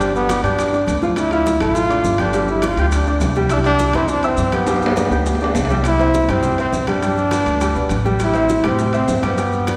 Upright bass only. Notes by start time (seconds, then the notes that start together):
Already playing: G1
0.43 G2
0.88 D2
1.60 A1
2.04 G1
2.76 D2
3.20 C2
3.94 E2
4.37 G2
5.10 D2
5.55 C2
6.28 G2
6.73 G2
7.46 D2
7.75 B1
7.90 A1
8.64 A2
9.08 G2